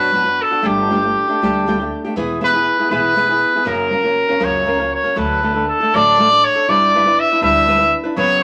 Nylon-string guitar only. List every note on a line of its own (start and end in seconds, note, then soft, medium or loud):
0.00 0.14 B2 medium
0.00 0.11 F#3 medium
0.00 0.13 B3 medium
0.00 0.12 D4 medium
0.00 0.13 F#4 medium
0.13 0.26 F#3 medium
0.13 0.25 B3 medium
0.13 0.25 D4 medium
0.13 0.24 F#4 medium
0.25 0.52 B3 soft
0.25 0.51 D4 soft
0.25 0.50 F#4 soft
0.51 0.62 B3 soft
0.51 0.62 D4 medium
0.51 0.63 F#4 medium
0.62 0.89 G3 medium
0.62 0.89 A3 medium
0.62 0.90 D4 medium
0.62 0.90 G4 medium
0.90 1.03 G3 medium
0.90 1.03 A3 medium
0.90 1.02 D4 medium
0.90 1.01 G4 medium
1.02 1.29 A3 soft
1.02 1.28 D4 medium
1.02 1.27 G4 medium
1.28 1.42 A3 medium
1.28 1.41 D4 medium
1.28 1.41 G4 medium
1.42 1.65 G3 medium
1.42 1.66 A3 medium
1.42 1.67 D4 medium
1.42 1.67 G4 loud
1.66 1.79 G3 medium
1.66 1.80 A3 medium
1.66 1.80 D4 medium
1.66 1.78 G4 medium
1.79 2.05 A3 medium
1.79 2.05 D4 medium
1.79 2.03 G4 medium
2.05 2.17 A3 soft
2.05 2.16 D4 medium
2.05 2.17 G4 medium
2.16 2.40 E3 medium
2.16 2.40 B3 medium
2.16 2.40 E4 medium
2.16 2.41 G#4 loud
2.41 2.54 E3 medium
2.41 2.54 B3 medium
2.41 2.54 E4 medium
2.41 2.52 G#4 medium
2.53 2.79 B3 soft
2.53 2.79 E4 medium
2.53 2.78 G#4 medium
2.79 2.90 B3 medium
2.79 2.90 E4 medium
2.79 2.91 G#4 medium
2.90 3.14 E3 medium
2.90 3.15 B3 loud
2.90 3.15 E4 loud
2.90 3.16 G#4 medium
3.16 3.29 E3 medium
3.16 3.29 B3 medium
3.16 3.29 E4 medium
3.16 3.28 G#4 medium
3.29 3.55 B3 soft
3.29 3.55 E4 medium
3.29 3.54 G#4 medium
3.55 3.65 B3 soft
3.55 3.65 E4 medium
3.55 3.65 G#4 medium
3.64 3.91 F#2 medium
3.64 3.91 C#3 medium
3.64 3.90 F#3 medium
3.64 3.90 A#3 medium
3.64 3.91 C#4 medium
3.64 3.91 A#4 medium
3.91 4.04 F#3 medium
3.91 4.03 A#3 medium
3.91 4.03 C#4 medium
3.91 4.03 A#4 medium
4.04 4.29 F#3 medium
4.04 4.28 A#3 soft
4.04 4.28 C#4 soft
4.04 4.27 A#4 medium
4.29 4.39 F#3 soft
4.29 4.39 A#3 medium
4.29 4.40 C#4 medium
4.29 4.39 A#4 medium
4.40 4.67 F#2 medium
4.40 4.67 C#3 medium
4.40 4.65 F#3 medium
4.40 4.65 A#3 medium
4.40 4.67 C#4 medium
4.40 4.67 A#4 medium
4.66 4.80 F#3 medium
4.66 4.80 A#3 medium
4.66 4.79 C#4 medium
4.66 4.78 A#4 medium
4.80 5.04 F#3 soft
4.80 5.04 A#3 soft
4.80 5.04 C#4 soft
4.80 5.03 A#4 medium
5.04 5.15 F#3 soft
5.04 5.15 A#3 soft
5.04 5.16 C#4 soft
5.04 5.16 A#4 medium
5.15 5.43 D3 medium
5.15 5.41 F#3 medium
5.15 5.42 A3 medium
5.15 5.43 D4 medium
5.15 5.43 A4 medium
5.43 5.56 F#3 medium
5.43 5.55 A3 medium
5.43 5.54 D4 medium
5.43 5.53 A4 medium
5.54 5.81 A3 soft
5.54 5.81 D4 soft
5.54 5.79 A4 medium
5.80 5.93 A3 soft
5.80 5.95 D4 medium
5.80 5.94 A4 medium
5.94 6.20 D3 medium
5.94 6.17 F#3 medium
5.94 6.18 A3 loud
5.94 6.18 D4 medium
5.94 6.19 A4 medium
6.19 6.32 F#3 medium
6.19 6.32 A3 medium
6.19 6.31 D4 medium
6.19 6.30 A4 medium
6.32 6.55 D4 soft
6.55 6.68 A3 soft
6.55 6.67 D4 medium
6.55 6.69 A4 medium
6.68 6.94 G3 medium
6.68 6.94 D4 medium
6.68 6.94 E4 medium
6.68 6.94 B4 medium
6.95 7.07 G3 medium
6.95 7.06 D4 medium
6.95 7.05 E4 medium
6.95 7.05 B4 medium
7.06 7.32 D4 soft
7.06 7.31 E4 medium
7.06 7.30 B4 medium
7.32 7.40 D4 soft
7.32 7.41 E4 medium
7.32 7.41 B4 medium
7.41 7.67 G3 medium
7.41 7.67 D4 medium
7.41 7.67 E4 medium
7.41 7.67 B4 medium
7.68 7.81 G3 medium
7.68 7.79 D4 medium
7.68 7.78 E4 medium
7.68 7.77 B4 medium
7.79 8.04 D4 soft
7.79 8.03 E4 soft
7.79 8.02 B4 medium
8.04 8.17 D4 medium
8.04 8.17 E4 medium
8.04 8.16 B4 medium
8.16 8.43 F#2 medium
8.16 8.43 C#3 medium
8.16 8.42 F#3 loud
8.16 8.42 B3 medium
8.16 8.42 F#4 medium
8.16 8.43 B4 medium